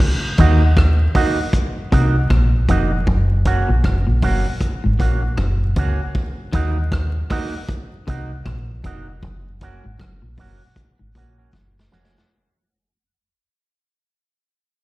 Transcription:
0.00 kick
0.38 D#2 D#3 A#3 D#4 F#4, kick, closed hi-hat
0.77 kick, cross-stick
1.15 A#3 D#4 F#4, kick, open hi-hat
1.53 kick, hi-hat pedal
1.92 C2 C3 A#3 D#4 F#4, kick, closed hi-hat
2.30 A#1 A#2, kick, cross-stick
2.69 F1 F2 A#3 D#4 F#4, kick, closed hi-hat
2.92 muted clean electric guitar stroke
3.07 F#1 F#2, kick
3.45 A#3 C#4 F#4, kick, closed hi-hat
3.68 A#1 A#2
3.84 F#1 F#2, kick, cross-stick
4.07 A#1 A#2
4.22 F#1 F#2 A#3 C#4 F#4, kick, open hi-hat
4.60 kick, hi-hat pedal
4.84 G#1 G#2
4.99 A#1 A#2 A#3 C#4 F#4, kick, closed hi-hat
5.23 muted clean electric guitar stroke
5.37 F#1 F#2, kick, cross-stick
5.76 C#2 C#3 A#3 C#4 F#4, kick, closed hi-hat
6.15 kick
6.53 D#2 D#3 A#3 D#4 F#4, kick, closed hi-hat
6.92 kick, cross-stick
7.30 A#3 D#4 F#4, kick, cross-stick, open hi-hat
7.68 kick, hi-hat pedal
8.07 C2 C3 A#3 D#4 F#4, kick, closed hi-hat
8.46 A#1 A#2, kick, cross-stick
8.84 F1 F2 A#3 D#4 F#4, kick, closed hi-hat
9.08 muted clean electric guitar stroke
9.22 F#1 F#2, kick
9.61 A#3 C#4 F#4, kick, closed hi-hat
9.84 G#1 G#2
9.99 F#1 F#2, kick, cross-stick
10.22 A#1 A#2
10.37 F#1 F#2 A#3 C#4 F#4, kick, open hi-hat
10.76 kick, hi-hat pedal
10.99 G#1 G#2
11.15 A#1 A#2 A#3 C#4 F#4, kick, closed hi-hat
11.38 A#3 C#4 F#4
11.53 F#1 F#2, kick, snare
11.79 snare
11.92 F1 F2 A#3 C#4 F#4, snare
12.05 snare
12.18 snare

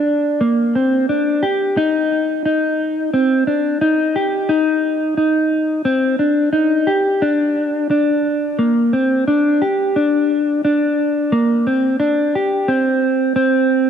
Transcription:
Already playing: D4
0.41 A#3
0.75 C4
1.09 D4
1.43 G4
1.77 D#4
2.46 D#4
3.13 C4
3.47 D4
3.81 D#4
4.16 G4
4.49 D#4
5.17 D#4
5.85 C4
6.19 D4
6.53 D#4
6.87 G4
7.22 D4
7.91 D4
8.59 A#3
8.93 C4
9.28 D4
9.62 G4
9.96 D4
10.65 D4
11.32 A#3
11.67 C4
12.00 D4
12.35 G4
12.68 C4
13.36 C4

